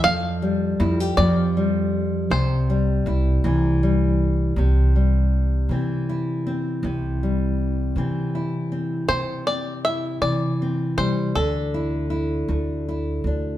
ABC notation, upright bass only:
X:1
M:6/8
L:1/8
Q:3/8=53
K:C
V:1 name="Upright bass" clef=bass
F,,2 F,, F,,3 | C,,2 C,, C,,3 | C,,3 C,3 | C,,3 C,3 |
C,3 C,2 C, | D,,3 D,,2 D,, |]